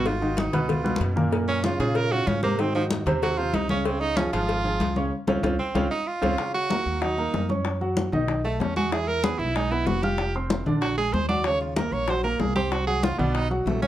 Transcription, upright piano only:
0.06 D#3 D#4 F#4
0.21 D#3 D#4 F#4
0.53 B2 B3 B4
0.84 B2 B3 B4
1.16 A#2 A#3 A#4
1.32 A#2 A#3 A#4
1.63 C#3 C#4 F4
1.79 C#3 C#4 F4
2.11 C#3 C#4 F4
2.43 C3 C4 C5
2.59 D#3 D#4 F#4
2.75 D#3 D#4 F#4
3.07 C3 C4 C5
3.38 C3 C4 C5
3.71 C#3 C#4 C#5
3.87 C#3 C#4 C#5
4.17 F3 F4 G#4
4.33 F3 F4 G#4
4.64 F3 F4 G#4
4.96 C#3 C#4 C#5
5.28 C4 C#4 F4
5.43 C4 C#4 F4
5.75 C4 C#4 F4
6.21 C4 C#4 F4
6.37 C#3 C#4 C#5
6.70 A#3 A#4 A#5
7.01 F#3 F#4 F#5
7.18 A#3 A#4 A#5
7.49 C#4 C#5 C#6
7.81 F#3 F#4 F#5
8.12 D#3 D#4 D#5
8.44 A3 A4 A5
8.77 G#3 G#4 G#5
8.92 E3 E4 E5
9.23 B3 B4 B5
9.56 G#3 G#4 G#5
9.71 B3 B4 B5
10.03 F4 F5 F6
10.36 C4 C5 C6
10.66 D3 D4 D5
10.97 G#3 G#4 G#5
11.29 F#3 F#4 F#5
11.46 C#3 C#4 C#5
11.77 A#3 A#4 A#5
12.08 F#3 F#4 F#5
12.24 A#3 A#4 A#5
12.56 C4 C5 C6
12.87 F#3 F#4 F#5
13.18 B2 B3 B4
13.51 F#3 F#4 F#5
13.82 C#3 C#4 C#5

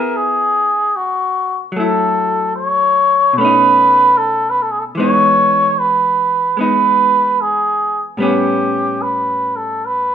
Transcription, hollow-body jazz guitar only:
Already playing: C#3 B3 E4 G#4
1.72 F#3
1.76 A3 E4
3.33 B2
3.38 A3 C#4
3.45 D#4
4.95 E3 G#3
4.99 B3 D#4
6.57 G#3 B3 D#4
8.17 A2 G3 B3
8.22 C#4

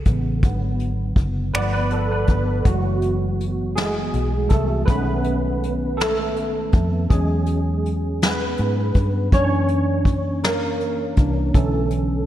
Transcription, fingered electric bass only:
0.06 A1
0.43 G#1
1.16 F#1
1.55 G1
2.29 G1
2.65 F#1
4.14 B1
4.51 C2
4.88 B1
6.74 F2
7.11 E2
8.59 G#2
8.96 G2
9.33 F#2
11.18 C2
11.55 B1

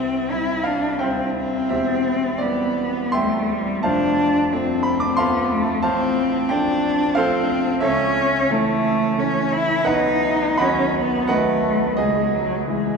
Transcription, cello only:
Already playing: C4
0.31 E4
0.66 D4
1.01 C4
1.37 C4
2.41 B3
3.15 A3
3.51 G3
3.85 D4
4.52 C4
5.19 B3
5.52 A3
5.85 C4
6.50 D4
7.17 C4
7.82 C#4
8.52 A3
9.19 C#4
9.53 E4
9.87 D#4
10.60 C#4
10.96 B3
11.30 A3
12.01 G#3
12.34 F#3
12.69 G#3

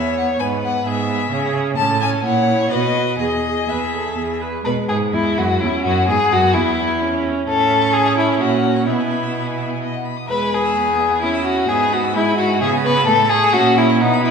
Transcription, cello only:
Already playing: E2
0.40 G#2
0.86 G#2
1.31 C#3
1.78 A2
2.24 A#2
2.71 B2
3.19 E2
3.69 E2
4.18 E2
4.66 B2
4.90 G#2
5.14 E2
5.37 F#2
5.62 E2
5.85 F#2
6.08 G#2
6.32 F#2
6.55 E2
7.48 A2
8.40 A#2
8.87 B2
10.29 E2
11.69 G#2
12.62 C#3
13.07 A2
13.55 A#2
14.01 B2

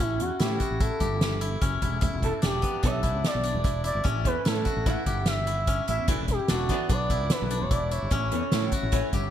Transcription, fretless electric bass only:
0.00 A1
0.20 E2
0.40 A2
0.70 A1
1.01 G1
1.62 F#1
1.82 E1
2.02 E1
2.13 E1
2.43 E1
2.83 B1
3.14 C#2
3.35 B1
3.54 E1
3.95 G1
4.05 A1
4.25 E2
4.46 A2
4.76 A1
5.06 G1
5.88 A1
5.99 E2
6.08 E1
6.20 E1
6.51 E1
6.89 B1
7.20 C#2
7.42 B1
7.62 E1
8.02 G1
8.11 A1
8.33 E2
8.53 A2
8.83 A1
9.13 G1

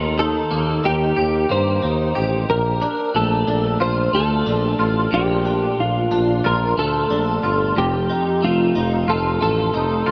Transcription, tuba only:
Already playing: D#2
0.52 D#2
0.84 D#2
1.17 D#2
1.50 G2
1.83 D#2
2.16 A1
2.49 A#1
3.15 A#1
3.47 A#1
3.80 A#1
4.13 D2
4.46 A#1
4.79 A1
5.12 A#1
5.78 A#1
6.11 A#1
6.45 A#1
6.77 D2
7.10 A#1
7.43 G1
7.77 F1
8.42 F1
8.75 F1
9.08 F1
9.41 A1
9.74 F1
10.06 D2

